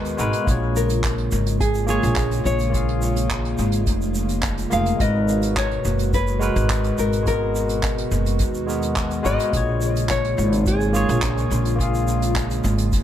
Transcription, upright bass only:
Already playing: D#2
0.19 G#1
0.47 A#1
1.32 G#1
2.03 A#1
2.45 A#1
3.59 G#1
3.87 F1
4.72 F1
5.00 G#1
5.85 F#1
6.56 G#1
6.98 G#1
8.12 F#1
8.40 D#2
9.25 G#1
9.53 A#1
10.38 G#1
11.09 A#1
11.51 A#1
12.64 G#1
12.93 F1

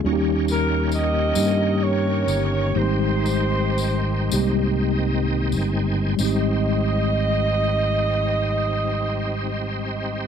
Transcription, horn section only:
0.51 A#4
0.93 G4 A#4 D#5
1.83 G4 A#4 C#5
2.76 D#4 G4 C5
6.21 D#5

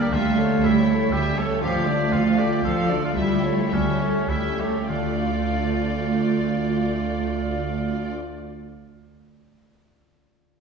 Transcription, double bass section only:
0.12 D2
0.63 D2
1.13 D2
1.62 D2
2.12 D2
2.63 D2
3.16 D2
3.71 D2
4.28 D2
4.89 D2

